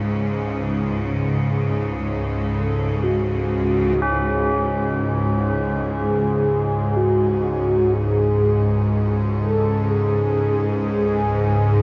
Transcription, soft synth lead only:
0, 0, Header, 1, 2, 480
1, 0, Start_track
1, 0, Tempo, 983607
1, 29, Time_signature, 4, 2, 24, 8
1, 5768, End_track
2, 0, Start_track
2, 0, Title_t, "Soft synth lead"
2, 0, Program_c, 0, 80
2, 1232, Note_on_c, 0, 69, 94
2, 1479, Note_on_c, 0, 66, 93
2, 1487, Note_off_c, 0, 69, 0
2, 1955, Note_on_c, 0, 68, 101
2, 1962, Note_off_c, 0, 66, 0
2, 2672, Note_off_c, 0, 68, 0
2, 2921, Note_on_c, 0, 68, 110
2, 3398, Note_on_c, 0, 66, 94
2, 3405, Note_off_c, 0, 68, 0
2, 3874, Note_on_c, 0, 68, 102
2, 3882, Note_off_c, 0, 66, 0
2, 4352, Note_off_c, 0, 68, 0
2, 4593, Note_on_c, 0, 69, 85
2, 4833, Note_on_c, 0, 68, 99
2, 4841, Note_off_c, 0, 69, 0
2, 5311, Note_off_c, 0, 68, 0
2, 5318, Note_on_c, 0, 68, 96
2, 5768, Note_off_c, 0, 68, 0
2, 5768, End_track
0, 0, End_of_file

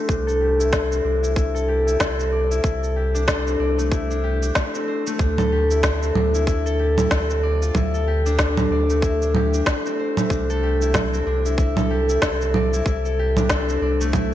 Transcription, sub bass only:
0, 0, Header, 1, 2, 480
1, 0, Start_track
1, 0, Tempo, 638298
1, 69, Time_signature, 4, 2, 24, 8
1, 10784, End_track
2, 0, Start_track
2, 0, Title_t, "Sub bass"
2, 0, Program_c, 0, 38
2, 66, Note_on_c, 0, 36, 96
2, 758, Note_off_c, 0, 36, 0
2, 786, Note_on_c, 0, 36, 80
2, 1479, Note_off_c, 0, 36, 0
2, 1504, Note_on_c, 0, 36, 87
2, 1958, Note_off_c, 0, 36, 0
2, 1984, Note_on_c, 0, 36, 92
2, 2678, Note_off_c, 0, 36, 0
2, 2704, Note_on_c, 0, 36, 80
2, 3397, Note_off_c, 0, 36, 0
2, 3905, Note_on_c, 0, 38, 96
2, 4598, Note_off_c, 0, 38, 0
2, 4625, Note_on_c, 0, 38, 86
2, 5318, Note_off_c, 0, 38, 0
2, 5345, Note_on_c, 0, 38, 83
2, 5798, Note_off_c, 0, 38, 0
2, 5826, Note_on_c, 0, 38, 94
2, 6518, Note_off_c, 0, 38, 0
2, 6545, Note_on_c, 0, 38, 82
2, 7238, Note_off_c, 0, 38, 0
2, 7746, Note_on_c, 0, 36, 99
2, 8439, Note_off_c, 0, 36, 0
2, 8471, Note_on_c, 0, 36, 80
2, 9161, Note_off_c, 0, 36, 0
2, 9188, Note_on_c, 0, 36, 83
2, 9640, Note_off_c, 0, 36, 0
2, 9670, Note_on_c, 0, 36, 92
2, 10360, Note_off_c, 0, 36, 0
2, 10388, Note_on_c, 0, 36, 82
2, 10784, Note_off_c, 0, 36, 0
2, 10784, End_track
0, 0, End_of_file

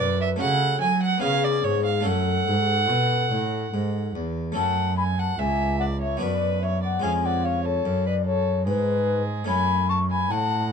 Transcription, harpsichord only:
0, 0, Header, 1, 2, 480
1, 0, Start_track
1, 0, Key_signature, 3, "minor"
1, 0, Tempo, 829876
1, 1186, Time_signature, 3, 2, 24, 8
1, 3596, Tempo, 818554
1, 6237, End_track
2, 0, Start_track
2, 0, Title_t, "Harpsichord"
2, 0, Program_c, 0, 6
2, 0, Note_on_c, 0, 62, 56
2, 0, Note_on_c, 0, 66, 55
2, 2, Note_on_c, 0, 42, 64
2, 209, Note_off_c, 0, 62, 0
2, 209, Note_on_c, 0, 57, 54
2, 211, Note_off_c, 0, 42, 0
2, 213, Note_off_c, 0, 66, 0
2, 218, Note_on_c, 0, 61, 55
2, 225, Note_on_c, 0, 66, 57
2, 235, Note_on_c, 0, 49, 60
2, 446, Note_off_c, 0, 49, 0
2, 469, Note_on_c, 0, 54, 65
2, 680, Note_off_c, 0, 57, 0
2, 682, Note_on_c, 0, 59, 55
2, 683, Note_off_c, 0, 54, 0
2, 684, Note_off_c, 0, 61, 0
2, 688, Note_off_c, 0, 66, 0
2, 692, Note_on_c, 0, 61, 55
2, 700, Note_on_c, 0, 68, 54
2, 708, Note_on_c, 0, 49, 62
2, 923, Note_off_c, 0, 49, 0
2, 948, Note_on_c, 0, 44, 61
2, 1160, Note_off_c, 0, 59, 0
2, 1161, Note_on_c, 0, 57, 49
2, 1163, Note_off_c, 0, 61, 0
2, 1165, Note_off_c, 0, 44, 0
2, 1169, Note_off_c, 0, 68, 0
2, 1170, Note_on_c, 0, 61, 50
2, 1178, Note_on_c, 0, 69, 48
2, 1189, Note_on_c, 0, 42, 55
2, 1407, Note_off_c, 0, 42, 0
2, 1408, Note_off_c, 0, 57, 0
2, 1413, Note_off_c, 0, 61, 0
2, 1434, Note_on_c, 0, 44, 51
2, 1651, Note_off_c, 0, 44, 0
2, 1672, Note_on_c, 0, 47, 54
2, 1892, Note_off_c, 0, 47, 0
2, 1915, Note_on_c, 0, 45, 51
2, 2134, Note_off_c, 0, 45, 0
2, 2162, Note_on_c, 0, 44, 49
2, 2378, Note_off_c, 0, 44, 0
2, 2403, Note_on_c, 0, 40, 49
2, 2612, Note_off_c, 0, 69, 0
2, 2615, Note_on_c, 0, 57, 52
2, 2619, Note_off_c, 0, 40, 0
2, 2624, Note_on_c, 0, 61, 51
2, 2634, Note_on_c, 0, 69, 55
2, 2643, Note_on_c, 0, 42, 59
2, 3097, Note_off_c, 0, 42, 0
2, 3119, Note_on_c, 0, 37, 58
2, 3560, Note_off_c, 0, 57, 0
2, 3565, Note_off_c, 0, 61, 0
2, 3569, Note_on_c, 0, 59, 51
2, 3570, Note_off_c, 0, 69, 0
2, 3573, Note_off_c, 0, 37, 0
2, 3577, Note_on_c, 0, 62, 52
2, 3588, Note_on_c, 0, 66, 52
2, 3593, Note_on_c, 0, 42, 56
2, 4049, Note_off_c, 0, 59, 0
2, 4052, Note_on_c, 0, 56, 49
2, 4053, Note_off_c, 0, 42, 0
2, 4053, Note_off_c, 0, 62, 0
2, 4059, Note_off_c, 0, 66, 0
2, 4062, Note_on_c, 0, 61, 53
2, 4070, Note_on_c, 0, 68, 53
2, 4078, Note_on_c, 0, 41, 60
2, 4530, Note_off_c, 0, 56, 0
2, 4535, Note_off_c, 0, 41, 0
2, 4556, Note_on_c, 0, 42, 58
2, 5013, Note_off_c, 0, 42, 0
2, 5035, Note_on_c, 0, 44, 60
2, 5485, Note_off_c, 0, 61, 0
2, 5489, Note_on_c, 0, 57, 52
2, 5490, Note_off_c, 0, 68, 0
2, 5492, Note_off_c, 0, 44, 0
2, 5497, Note_on_c, 0, 61, 51
2, 5507, Note_on_c, 0, 73, 49
2, 5517, Note_on_c, 0, 42, 60
2, 5972, Note_off_c, 0, 42, 0
2, 5994, Note_on_c, 0, 45, 55
2, 6237, Note_off_c, 0, 45, 0
2, 6237, Note_off_c, 0, 57, 0
2, 6237, Note_off_c, 0, 61, 0
2, 6237, Note_off_c, 0, 73, 0
2, 6237, End_track
0, 0, End_of_file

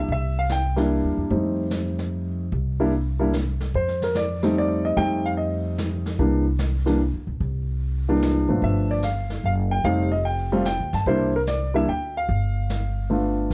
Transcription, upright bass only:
0, 0, Header, 1, 2, 480
1, 0, Start_track
1, 0, Tempo, 406504
1, 103, Time_signature, 3, 2, 24, 8
1, 15987, End_track
2, 0, Start_track
2, 0, Title_t, "Upright bass"
2, 0, Program_c, 0, 32
2, 101, Note_on_c, 0, 36, 81
2, 1173, Note_off_c, 0, 36, 0
2, 1224, Note_on_c, 0, 38, 55
2, 1372, Note_off_c, 0, 38, 0
2, 1385, Note_on_c, 0, 40, 61
2, 1532, Note_off_c, 0, 40, 0
2, 1546, Note_on_c, 0, 41, 76
2, 2935, Note_off_c, 0, 41, 0
2, 2981, Note_on_c, 0, 36, 84
2, 4373, Note_off_c, 0, 36, 0
2, 4423, Note_on_c, 0, 41, 77
2, 5815, Note_off_c, 0, 41, 0
2, 5865, Note_on_c, 0, 41, 78
2, 7256, Note_off_c, 0, 41, 0
2, 7307, Note_on_c, 0, 36, 86
2, 8377, Note_off_c, 0, 36, 0
2, 8430, Note_on_c, 0, 38, 60
2, 8575, Note_off_c, 0, 38, 0
2, 8586, Note_on_c, 0, 37, 62
2, 8733, Note_off_c, 0, 37, 0
2, 8745, Note_on_c, 0, 36, 77
2, 9978, Note_off_c, 0, 36, 0
2, 10027, Note_on_c, 0, 32, 59
2, 10174, Note_off_c, 0, 32, 0
2, 10182, Note_on_c, 0, 31, 78
2, 11096, Note_off_c, 0, 31, 0
2, 11140, Note_on_c, 0, 30, 76
2, 11588, Note_off_c, 0, 30, 0
2, 11621, Note_on_c, 0, 29, 75
2, 12696, Note_off_c, 0, 29, 0
2, 12752, Note_on_c, 0, 39, 62
2, 12898, Note_off_c, 0, 39, 0
2, 12909, Note_on_c, 0, 43, 68
2, 13056, Note_off_c, 0, 43, 0
2, 13062, Note_on_c, 0, 36, 80
2, 13977, Note_off_c, 0, 36, 0
2, 14024, Note_on_c, 0, 38, 71
2, 14471, Note_off_c, 0, 38, 0
2, 14507, Note_on_c, 0, 31, 85
2, 15900, Note_off_c, 0, 31, 0
2, 15946, Note_on_c, 0, 36, 78
2, 15987, Note_off_c, 0, 36, 0
2, 15987, End_track
0, 0, End_of_file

